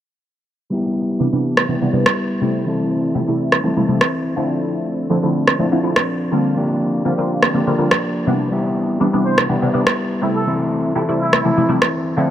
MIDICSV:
0, 0, Header, 1, 5, 480
1, 0, Start_track
1, 0, Key_signature, 0, "major"
1, 0, Tempo, 487805
1, 701, Time_signature, 4, 2, 24, 8
1, 12108, End_track
2, 0, Start_track
2, 0, Title_t, "Trumpet section"
2, 0, Program_c, 0, 61
2, 9102, Note_on_c, 0, 72, 89
2, 9281, Note_off_c, 0, 72, 0
2, 10190, Note_on_c, 0, 69, 94
2, 10352, Note_off_c, 0, 69, 0
2, 11021, Note_on_c, 0, 64, 92
2, 11501, Note_off_c, 0, 64, 0
2, 12108, End_track
3, 0, Start_track
3, 0, Title_t, "Clean electric guitar"
3, 0, Program_c, 1, 27
3, 690, Note_on_c, 1, 55, 78
3, 704, Note_on_c, 1, 59, 83
3, 715, Note_on_c, 1, 64, 89
3, 726, Note_on_c, 1, 67, 86
3, 1645, Note_off_c, 1, 55, 0
3, 1651, Note_off_c, 1, 59, 0
3, 1657, Note_on_c, 1, 55, 85
3, 1661, Note_off_c, 1, 67, 0
3, 1663, Note_on_c, 1, 59, 85
3, 1664, Note_off_c, 1, 64, 0
3, 1668, Note_on_c, 1, 64, 86
3, 1673, Note_on_c, 1, 67, 91
3, 2362, Note_off_c, 1, 67, 0
3, 2374, Note_on_c, 1, 67, 52
3, 2375, Note_off_c, 1, 64, 0
3, 2379, Note_off_c, 1, 55, 0
3, 2382, Note_off_c, 1, 59, 0
3, 2387, Note_on_c, 1, 64, 53
3, 2397, Note_on_c, 1, 59, 47
3, 2610, Note_on_c, 1, 52, 76
3, 2617, Note_off_c, 1, 67, 0
3, 2620, Note_off_c, 1, 59, 0
3, 2624, Note_off_c, 1, 64, 0
3, 2624, Note_on_c, 1, 60, 87
3, 2635, Note_on_c, 1, 64, 93
3, 2645, Note_on_c, 1, 69, 91
3, 3565, Note_off_c, 1, 52, 0
3, 3575, Note_off_c, 1, 64, 0
3, 3576, Note_on_c, 1, 52, 82
3, 3578, Note_off_c, 1, 60, 0
3, 3582, Note_on_c, 1, 60, 92
3, 3586, Note_on_c, 1, 64, 92
3, 3588, Note_off_c, 1, 69, 0
3, 3592, Note_on_c, 1, 69, 93
3, 4291, Note_off_c, 1, 69, 0
3, 4295, Note_on_c, 1, 69, 70
3, 4298, Note_off_c, 1, 52, 0
3, 4298, Note_off_c, 1, 64, 0
3, 4302, Note_on_c, 1, 62, 64
3, 4303, Note_off_c, 1, 60, 0
3, 4307, Note_on_c, 1, 60, 59
3, 4311, Note_on_c, 1, 53, 53
3, 5010, Note_off_c, 1, 53, 0
3, 5010, Note_off_c, 1, 60, 0
3, 5014, Note_on_c, 1, 53, 62
3, 5018, Note_off_c, 1, 69, 0
3, 5022, Note_on_c, 1, 60, 61
3, 5026, Note_off_c, 1, 62, 0
3, 5030, Note_on_c, 1, 62, 65
3, 5036, Note_on_c, 1, 69, 66
3, 5490, Note_off_c, 1, 60, 0
3, 5491, Note_off_c, 1, 53, 0
3, 5495, Note_on_c, 1, 53, 91
3, 5499, Note_off_c, 1, 69, 0
3, 5502, Note_on_c, 1, 60, 82
3, 5503, Note_off_c, 1, 62, 0
3, 5507, Note_on_c, 1, 62, 90
3, 5511, Note_on_c, 1, 69, 96
3, 6202, Note_off_c, 1, 69, 0
3, 6214, Note_on_c, 1, 69, 54
3, 6221, Note_off_c, 1, 60, 0
3, 6223, Note_off_c, 1, 62, 0
3, 6227, Note_on_c, 1, 62, 50
3, 6237, Note_on_c, 1, 60, 46
3, 6451, Note_off_c, 1, 53, 0
3, 6455, Note_off_c, 1, 62, 0
3, 6455, Note_on_c, 1, 53, 88
3, 6457, Note_off_c, 1, 69, 0
3, 6458, Note_off_c, 1, 60, 0
3, 6462, Note_on_c, 1, 58, 91
3, 6467, Note_on_c, 1, 62, 94
3, 6471, Note_on_c, 1, 67, 88
3, 6921, Note_off_c, 1, 53, 0
3, 6930, Note_off_c, 1, 58, 0
3, 6933, Note_on_c, 1, 53, 61
3, 6937, Note_off_c, 1, 62, 0
3, 6942, Note_on_c, 1, 58, 60
3, 6949, Note_on_c, 1, 62, 63
3, 6952, Note_off_c, 1, 67, 0
3, 6956, Note_on_c, 1, 67, 65
3, 7399, Note_off_c, 1, 53, 0
3, 7411, Note_on_c, 1, 53, 86
3, 7412, Note_off_c, 1, 58, 0
3, 7424, Note_on_c, 1, 58, 90
3, 7425, Note_off_c, 1, 62, 0
3, 7435, Note_on_c, 1, 62, 102
3, 7440, Note_off_c, 1, 67, 0
3, 7445, Note_on_c, 1, 67, 93
3, 8373, Note_off_c, 1, 53, 0
3, 8377, Note_on_c, 1, 55, 84
3, 8379, Note_off_c, 1, 58, 0
3, 8381, Note_off_c, 1, 67, 0
3, 8383, Note_on_c, 1, 59, 91
3, 8384, Note_off_c, 1, 62, 0
3, 8388, Note_on_c, 1, 64, 96
3, 8393, Note_on_c, 1, 67, 94
3, 8843, Note_off_c, 1, 55, 0
3, 8852, Note_off_c, 1, 59, 0
3, 8855, Note_on_c, 1, 55, 59
3, 8864, Note_on_c, 1, 59, 62
3, 8867, Note_off_c, 1, 64, 0
3, 8867, Note_off_c, 1, 67, 0
3, 8871, Note_on_c, 1, 64, 65
3, 8878, Note_on_c, 1, 67, 65
3, 9326, Note_off_c, 1, 55, 0
3, 9331, Note_off_c, 1, 59, 0
3, 9337, Note_on_c, 1, 55, 84
3, 9341, Note_off_c, 1, 67, 0
3, 9343, Note_on_c, 1, 59, 89
3, 9344, Note_off_c, 1, 64, 0
3, 9348, Note_on_c, 1, 64, 87
3, 9353, Note_on_c, 1, 67, 90
3, 10044, Note_off_c, 1, 67, 0
3, 10056, Note_off_c, 1, 64, 0
3, 10056, Note_on_c, 1, 67, 52
3, 10059, Note_off_c, 1, 55, 0
3, 10062, Note_off_c, 1, 59, 0
3, 10068, Note_on_c, 1, 64, 54
3, 10078, Note_on_c, 1, 59, 42
3, 10297, Note_off_c, 1, 64, 0
3, 10298, Note_off_c, 1, 67, 0
3, 10298, Note_on_c, 1, 52, 84
3, 10301, Note_off_c, 1, 59, 0
3, 10305, Note_on_c, 1, 60, 83
3, 10309, Note_on_c, 1, 64, 100
3, 10314, Note_on_c, 1, 69, 94
3, 10763, Note_off_c, 1, 52, 0
3, 10775, Note_on_c, 1, 52, 62
3, 10779, Note_off_c, 1, 64, 0
3, 10780, Note_off_c, 1, 60, 0
3, 10784, Note_on_c, 1, 60, 60
3, 10791, Note_on_c, 1, 64, 70
3, 10793, Note_off_c, 1, 69, 0
3, 10797, Note_on_c, 1, 69, 67
3, 11246, Note_off_c, 1, 52, 0
3, 11257, Note_on_c, 1, 52, 93
3, 11258, Note_off_c, 1, 64, 0
3, 11260, Note_off_c, 1, 60, 0
3, 11264, Note_on_c, 1, 60, 91
3, 11269, Note_on_c, 1, 64, 89
3, 11270, Note_off_c, 1, 69, 0
3, 11274, Note_on_c, 1, 69, 95
3, 11974, Note_off_c, 1, 69, 0
3, 11978, Note_on_c, 1, 69, 71
3, 11979, Note_off_c, 1, 52, 0
3, 11980, Note_off_c, 1, 64, 0
3, 11984, Note_on_c, 1, 62, 65
3, 11985, Note_off_c, 1, 60, 0
3, 11989, Note_on_c, 1, 60, 58
3, 11993, Note_on_c, 1, 53, 56
3, 12108, Note_off_c, 1, 53, 0
3, 12108, Note_off_c, 1, 60, 0
3, 12108, Note_off_c, 1, 62, 0
3, 12108, Note_off_c, 1, 69, 0
3, 12108, End_track
4, 0, Start_track
4, 0, Title_t, "Analog polysynth"
4, 0, Program_c, 2, 90
4, 1176, Note_on_c, 2, 48, 87
4, 1177, Note_on_c, 2, 52, 77
4, 1179, Note_on_c, 2, 55, 75
4, 1182, Note_on_c, 2, 59, 75
4, 1184, Note_on_c, 2, 62, 96
4, 1246, Note_off_c, 2, 48, 0
4, 1247, Note_off_c, 2, 52, 0
4, 1248, Note_off_c, 2, 55, 0
4, 1249, Note_off_c, 2, 59, 0
4, 1250, Note_off_c, 2, 62, 0
4, 1303, Note_on_c, 2, 48, 77
4, 1304, Note_on_c, 2, 52, 77
4, 1307, Note_on_c, 2, 55, 76
4, 1308, Note_on_c, 2, 59, 74
4, 1311, Note_on_c, 2, 62, 91
4, 1631, Note_off_c, 2, 48, 0
4, 1632, Note_off_c, 2, 52, 0
4, 1633, Note_off_c, 2, 55, 0
4, 1634, Note_off_c, 2, 59, 0
4, 1635, Note_off_c, 2, 62, 0
4, 1652, Note_on_c, 2, 48, 74
4, 1654, Note_on_c, 2, 52, 68
4, 1656, Note_on_c, 2, 55, 70
4, 1658, Note_on_c, 2, 59, 67
4, 1661, Note_on_c, 2, 62, 86
4, 1724, Note_off_c, 2, 48, 0
4, 1725, Note_off_c, 2, 52, 0
4, 1726, Note_off_c, 2, 55, 0
4, 1727, Note_off_c, 2, 59, 0
4, 1728, Note_off_c, 2, 62, 0
4, 1781, Note_on_c, 2, 48, 90
4, 1784, Note_on_c, 2, 52, 87
4, 1786, Note_on_c, 2, 55, 82
4, 1787, Note_on_c, 2, 59, 81
4, 1789, Note_on_c, 2, 62, 104
4, 1845, Note_off_c, 2, 48, 0
4, 1846, Note_off_c, 2, 52, 0
4, 1847, Note_off_c, 2, 55, 0
4, 1848, Note_off_c, 2, 59, 0
4, 1849, Note_off_c, 2, 62, 0
4, 1894, Note_on_c, 2, 48, 99
4, 1896, Note_on_c, 2, 52, 88
4, 1898, Note_on_c, 2, 55, 87
4, 1900, Note_on_c, 2, 59, 88
4, 1902, Note_on_c, 2, 62, 102
4, 2006, Note_off_c, 2, 48, 0
4, 2007, Note_off_c, 2, 52, 0
4, 2008, Note_off_c, 2, 55, 0
4, 2009, Note_off_c, 2, 59, 0
4, 2010, Note_off_c, 2, 62, 0
4, 2372, Note_on_c, 2, 48, 95
4, 2381, Note_on_c, 2, 55, 86
4, 2383, Note_on_c, 2, 57, 84
4, 2389, Note_on_c, 2, 64, 103
4, 3069, Note_off_c, 2, 48, 0
4, 3073, Note_off_c, 2, 55, 0
4, 3075, Note_off_c, 2, 57, 0
4, 3077, Note_off_c, 2, 64, 0
4, 3095, Note_on_c, 2, 48, 88
4, 3097, Note_on_c, 2, 53, 76
4, 3098, Note_on_c, 2, 55, 77
4, 3101, Note_on_c, 2, 57, 75
4, 3103, Note_on_c, 2, 64, 90
4, 3166, Note_off_c, 2, 48, 0
4, 3166, Note_off_c, 2, 53, 0
4, 3167, Note_off_c, 2, 55, 0
4, 3168, Note_off_c, 2, 57, 0
4, 3169, Note_off_c, 2, 64, 0
4, 3223, Note_on_c, 2, 48, 78
4, 3227, Note_on_c, 2, 55, 74
4, 3228, Note_on_c, 2, 57, 74
4, 3231, Note_on_c, 2, 64, 89
4, 3551, Note_off_c, 2, 48, 0
4, 3553, Note_off_c, 2, 55, 0
4, 3554, Note_off_c, 2, 57, 0
4, 3555, Note_off_c, 2, 64, 0
4, 3576, Note_on_c, 2, 48, 79
4, 3577, Note_on_c, 2, 53, 67
4, 3579, Note_on_c, 2, 55, 71
4, 3582, Note_on_c, 2, 57, 74
4, 3584, Note_on_c, 2, 64, 83
4, 3646, Note_off_c, 2, 48, 0
4, 3647, Note_off_c, 2, 53, 0
4, 3648, Note_off_c, 2, 55, 0
4, 3649, Note_off_c, 2, 57, 0
4, 3650, Note_off_c, 2, 64, 0
4, 3704, Note_on_c, 2, 48, 94
4, 3705, Note_on_c, 2, 53, 85
4, 3708, Note_on_c, 2, 55, 87
4, 3710, Note_on_c, 2, 57, 86
4, 3712, Note_on_c, 2, 64, 102
4, 3766, Note_off_c, 2, 48, 0
4, 3767, Note_off_c, 2, 53, 0
4, 3768, Note_off_c, 2, 55, 0
4, 3769, Note_off_c, 2, 57, 0
4, 3770, Note_off_c, 2, 64, 0
4, 3817, Note_on_c, 2, 48, 97
4, 3818, Note_on_c, 2, 53, 91
4, 3820, Note_on_c, 2, 55, 89
4, 3822, Note_on_c, 2, 57, 86
4, 3824, Note_on_c, 2, 64, 106
4, 3927, Note_off_c, 2, 48, 0
4, 3928, Note_off_c, 2, 53, 0
4, 3929, Note_off_c, 2, 55, 0
4, 3930, Note_off_c, 2, 57, 0
4, 3931, Note_off_c, 2, 64, 0
4, 4293, Note_on_c, 2, 50, 92
4, 4296, Note_on_c, 2, 53, 82
4, 4299, Note_on_c, 2, 57, 84
4, 4304, Note_on_c, 2, 60, 86
4, 4307, Note_on_c, 2, 64, 104
4, 4989, Note_off_c, 2, 50, 0
4, 4991, Note_off_c, 2, 53, 0
4, 4993, Note_off_c, 2, 57, 0
4, 4995, Note_off_c, 2, 60, 0
4, 4997, Note_off_c, 2, 64, 0
4, 5015, Note_on_c, 2, 50, 85
4, 5018, Note_on_c, 2, 53, 78
4, 5020, Note_on_c, 2, 57, 83
4, 5022, Note_on_c, 2, 60, 76
4, 5023, Note_on_c, 2, 64, 96
4, 5086, Note_off_c, 2, 50, 0
4, 5087, Note_off_c, 2, 53, 0
4, 5088, Note_off_c, 2, 57, 0
4, 5089, Note_off_c, 2, 60, 0
4, 5090, Note_off_c, 2, 64, 0
4, 5143, Note_on_c, 2, 50, 80
4, 5145, Note_on_c, 2, 53, 71
4, 5147, Note_on_c, 2, 57, 78
4, 5149, Note_on_c, 2, 60, 72
4, 5151, Note_on_c, 2, 64, 86
4, 5471, Note_off_c, 2, 50, 0
4, 5472, Note_off_c, 2, 53, 0
4, 5473, Note_off_c, 2, 57, 0
4, 5474, Note_off_c, 2, 60, 0
4, 5475, Note_off_c, 2, 64, 0
4, 5498, Note_on_c, 2, 50, 75
4, 5500, Note_on_c, 2, 53, 74
4, 5502, Note_on_c, 2, 57, 74
4, 5504, Note_on_c, 2, 60, 71
4, 5506, Note_on_c, 2, 64, 85
4, 5567, Note_off_c, 2, 50, 0
4, 5568, Note_off_c, 2, 53, 0
4, 5569, Note_off_c, 2, 57, 0
4, 5570, Note_off_c, 2, 60, 0
4, 5571, Note_off_c, 2, 64, 0
4, 5626, Note_on_c, 2, 50, 96
4, 5628, Note_on_c, 2, 53, 87
4, 5630, Note_on_c, 2, 57, 89
4, 5632, Note_on_c, 2, 60, 83
4, 5634, Note_on_c, 2, 64, 104
4, 5687, Note_off_c, 2, 50, 0
4, 5688, Note_off_c, 2, 53, 0
4, 5689, Note_off_c, 2, 57, 0
4, 5690, Note_off_c, 2, 60, 0
4, 5691, Note_off_c, 2, 64, 0
4, 5738, Note_on_c, 2, 50, 100
4, 5740, Note_on_c, 2, 53, 91
4, 5742, Note_on_c, 2, 57, 90
4, 5744, Note_on_c, 2, 60, 88
4, 5747, Note_on_c, 2, 64, 109
4, 5848, Note_off_c, 2, 50, 0
4, 5849, Note_off_c, 2, 53, 0
4, 5850, Note_off_c, 2, 57, 0
4, 5851, Note_off_c, 2, 60, 0
4, 5852, Note_off_c, 2, 64, 0
4, 6215, Note_on_c, 2, 50, 89
4, 6217, Note_on_c, 2, 55, 81
4, 6223, Note_on_c, 2, 58, 87
4, 6226, Note_on_c, 2, 60, 87
4, 6230, Note_on_c, 2, 65, 104
4, 6911, Note_off_c, 2, 50, 0
4, 6912, Note_off_c, 2, 55, 0
4, 6915, Note_off_c, 2, 58, 0
4, 6916, Note_off_c, 2, 60, 0
4, 6918, Note_off_c, 2, 65, 0
4, 6936, Note_on_c, 2, 50, 87
4, 6938, Note_on_c, 2, 55, 77
4, 6939, Note_on_c, 2, 58, 78
4, 6942, Note_on_c, 2, 60, 77
4, 6944, Note_on_c, 2, 65, 96
4, 7006, Note_off_c, 2, 50, 0
4, 7007, Note_off_c, 2, 55, 0
4, 7008, Note_off_c, 2, 58, 0
4, 7009, Note_off_c, 2, 60, 0
4, 7010, Note_off_c, 2, 65, 0
4, 7063, Note_on_c, 2, 50, 83
4, 7066, Note_on_c, 2, 55, 72
4, 7067, Note_on_c, 2, 58, 75
4, 7069, Note_on_c, 2, 60, 76
4, 7071, Note_on_c, 2, 65, 89
4, 7391, Note_off_c, 2, 50, 0
4, 7393, Note_off_c, 2, 55, 0
4, 7393, Note_off_c, 2, 58, 0
4, 7394, Note_off_c, 2, 60, 0
4, 7395, Note_off_c, 2, 65, 0
4, 7418, Note_on_c, 2, 50, 78
4, 7420, Note_on_c, 2, 55, 70
4, 7421, Note_on_c, 2, 58, 68
4, 7423, Note_on_c, 2, 60, 73
4, 7425, Note_on_c, 2, 65, 80
4, 7487, Note_off_c, 2, 50, 0
4, 7488, Note_off_c, 2, 55, 0
4, 7489, Note_off_c, 2, 58, 0
4, 7490, Note_off_c, 2, 60, 0
4, 7491, Note_off_c, 2, 65, 0
4, 7544, Note_on_c, 2, 50, 96
4, 7547, Note_on_c, 2, 55, 81
4, 7548, Note_on_c, 2, 58, 87
4, 7551, Note_on_c, 2, 60, 87
4, 7552, Note_on_c, 2, 65, 101
4, 7606, Note_off_c, 2, 50, 0
4, 7608, Note_off_c, 2, 55, 0
4, 7608, Note_off_c, 2, 58, 0
4, 7609, Note_off_c, 2, 60, 0
4, 7610, Note_off_c, 2, 65, 0
4, 7658, Note_on_c, 2, 50, 91
4, 7659, Note_on_c, 2, 55, 91
4, 7662, Note_on_c, 2, 58, 84
4, 7663, Note_on_c, 2, 60, 84
4, 7665, Note_on_c, 2, 65, 105
4, 7768, Note_off_c, 2, 50, 0
4, 7768, Note_off_c, 2, 55, 0
4, 7770, Note_off_c, 2, 58, 0
4, 7770, Note_off_c, 2, 60, 0
4, 7771, Note_off_c, 2, 65, 0
4, 8132, Note_on_c, 2, 48, 91
4, 8137, Note_on_c, 2, 52, 80
4, 8141, Note_on_c, 2, 55, 82
4, 8144, Note_on_c, 2, 59, 83
4, 8149, Note_on_c, 2, 62, 99
4, 8829, Note_off_c, 2, 48, 0
4, 8831, Note_off_c, 2, 52, 0
4, 8833, Note_off_c, 2, 55, 0
4, 8835, Note_off_c, 2, 59, 0
4, 8837, Note_off_c, 2, 62, 0
4, 8857, Note_on_c, 2, 48, 86
4, 8859, Note_on_c, 2, 52, 81
4, 8860, Note_on_c, 2, 55, 79
4, 8863, Note_on_c, 2, 59, 77
4, 8864, Note_on_c, 2, 62, 95
4, 8926, Note_off_c, 2, 48, 0
4, 8928, Note_off_c, 2, 52, 0
4, 8928, Note_off_c, 2, 55, 0
4, 8930, Note_off_c, 2, 59, 0
4, 8930, Note_off_c, 2, 62, 0
4, 8985, Note_on_c, 2, 48, 82
4, 8986, Note_on_c, 2, 52, 74
4, 8989, Note_on_c, 2, 55, 72
4, 8990, Note_on_c, 2, 59, 79
4, 8993, Note_on_c, 2, 62, 88
4, 9312, Note_off_c, 2, 48, 0
4, 9312, Note_off_c, 2, 52, 0
4, 9314, Note_off_c, 2, 55, 0
4, 9315, Note_off_c, 2, 59, 0
4, 9316, Note_off_c, 2, 62, 0
4, 9337, Note_on_c, 2, 48, 77
4, 9340, Note_on_c, 2, 52, 69
4, 9341, Note_on_c, 2, 55, 70
4, 9343, Note_on_c, 2, 59, 71
4, 9346, Note_on_c, 2, 62, 87
4, 9407, Note_off_c, 2, 48, 0
4, 9408, Note_off_c, 2, 52, 0
4, 9409, Note_off_c, 2, 55, 0
4, 9410, Note_off_c, 2, 59, 0
4, 9411, Note_off_c, 2, 62, 0
4, 9464, Note_on_c, 2, 48, 94
4, 9465, Note_on_c, 2, 52, 85
4, 9467, Note_on_c, 2, 55, 89
4, 9469, Note_on_c, 2, 59, 84
4, 9471, Note_on_c, 2, 62, 100
4, 9526, Note_off_c, 2, 48, 0
4, 9526, Note_off_c, 2, 52, 0
4, 9528, Note_off_c, 2, 55, 0
4, 9529, Note_off_c, 2, 59, 0
4, 9530, Note_off_c, 2, 62, 0
4, 9578, Note_on_c, 2, 48, 99
4, 9579, Note_on_c, 2, 52, 89
4, 9582, Note_on_c, 2, 55, 88
4, 9583, Note_on_c, 2, 59, 85
4, 9584, Note_on_c, 2, 62, 109
4, 9688, Note_off_c, 2, 48, 0
4, 9688, Note_off_c, 2, 52, 0
4, 9690, Note_off_c, 2, 55, 0
4, 9690, Note_off_c, 2, 59, 0
4, 9691, Note_off_c, 2, 62, 0
4, 10052, Note_on_c, 2, 48, 92
4, 10060, Note_on_c, 2, 55, 84
4, 10064, Note_on_c, 2, 57, 85
4, 10068, Note_on_c, 2, 64, 95
4, 10749, Note_off_c, 2, 48, 0
4, 10753, Note_off_c, 2, 55, 0
4, 10755, Note_off_c, 2, 57, 0
4, 10757, Note_off_c, 2, 64, 0
4, 10777, Note_on_c, 2, 48, 88
4, 10778, Note_on_c, 2, 53, 77
4, 10780, Note_on_c, 2, 55, 76
4, 10783, Note_on_c, 2, 57, 79
4, 10784, Note_on_c, 2, 64, 93
4, 10847, Note_off_c, 2, 48, 0
4, 10847, Note_off_c, 2, 53, 0
4, 10848, Note_off_c, 2, 55, 0
4, 10849, Note_off_c, 2, 57, 0
4, 10850, Note_off_c, 2, 64, 0
4, 10905, Note_on_c, 2, 48, 81
4, 10908, Note_on_c, 2, 55, 74
4, 10910, Note_on_c, 2, 57, 76
4, 10912, Note_on_c, 2, 64, 91
4, 11232, Note_off_c, 2, 48, 0
4, 11234, Note_off_c, 2, 55, 0
4, 11235, Note_off_c, 2, 57, 0
4, 11236, Note_off_c, 2, 64, 0
4, 11258, Note_on_c, 2, 48, 77
4, 11260, Note_on_c, 2, 53, 70
4, 11263, Note_on_c, 2, 55, 70
4, 11264, Note_on_c, 2, 57, 71
4, 11267, Note_on_c, 2, 64, 85
4, 11327, Note_off_c, 2, 48, 0
4, 11328, Note_off_c, 2, 53, 0
4, 11330, Note_off_c, 2, 55, 0
4, 11330, Note_off_c, 2, 57, 0
4, 11331, Note_off_c, 2, 64, 0
4, 11384, Note_on_c, 2, 48, 92
4, 11387, Note_on_c, 2, 53, 92
4, 11390, Note_on_c, 2, 55, 90
4, 11392, Note_on_c, 2, 57, 83
4, 11393, Note_on_c, 2, 64, 107
4, 11446, Note_off_c, 2, 48, 0
4, 11448, Note_off_c, 2, 53, 0
4, 11449, Note_off_c, 2, 55, 0
4, 11450, Note_off_c, 2, 57, 0
4, 11451, Note_off_c, 2, 64, 0
4, 11497, Note_on_c, 2, 48, 103
4, 11498, Note_on_c, 2, 53, 89
4, 11500, Note_on_c, 2, 55, 91
4, 11502, Note_on_c, 2, 57, 90
4, 11505, Note_on_c, 2, 64, 111
4, 11607, Note_off_c, 2, 48, 0
4, 11608, Note_off_c, 2, 53, 0
4, 11609, Note_off_c, 2, 55, 0
4, 11610, Note_off_c, 2, 57, 0
4, 11611, Note_off_c, 2, 64, 0
4, 11971, Note_on_c, 2, 50, 93
4, 11974, Note_on_c, 2, 53, 86
4, 11979, Note_on_c, 2, 57, 83
4, 11983, Note_on_c, 2, 60, 87
4, 11987, Note_on_c, 2, 64, 100
4, 12108, Note_off_c, 2, 50, 0
4, 12108, Note_off_c, 2, 53, 0
4, 12108, Note_off_c, 2, 57, 0
4, 12108, Note_off_c, 2, 60, 0
4, 12108, Note_off_c, 2, 64, 0
4, 12108, End_track
5, 0, Start_track
5, 0, Title_t, "Drums"
5, 1548, Note_on_c, 9, 37, 57
5, 1646, Note_off_c, 9, 37, 0
5, 2027, Note_on_c, 9, 37, 77
5, 2126, Note_off_c, 9, 37, 0
5, 3466, Note_on_c, 9, 37, 58
5, 3565, Note_off_c, 9, 37, 0
5, 3946, Note_on_c, 9, 37, 72
5, 4045, Note_off_c, 9, 37, 0
5, 5387, Note_on_c, 9, 37, 62
5, 5486, Note_off_c, 9, 37, 0
5, 5867, Note_on_c, 9, 37, 78
5, 5965, Note_off_c, 9, 37, 0
5, 7306, Note_on_c, 9, 37, 63
5, 7405, Note_off_c, 9, 37, 0
5, 7786, Note_on_c, 9, 37, 80
5, 7885, Note_off_c, 9, 37, 0
5, 9228, Note_on_c, 9, 37, 64
5, 9327, Note_off_c, 9, 37, 0
5, 9709, Note_on_c, 9, 37, 83
5, 9807, Note_off_c, 9, 37, 0
5, 11149, Note_on_c, 9, 37, 66
5, 11247, Note_off_c, 9, 37, 0
5, 11629, Note_on_c, 9, 37, 82
5, 11727, Note_off_c, 9, 37, 0
5, 12108, End_track
0, 0, End_of_file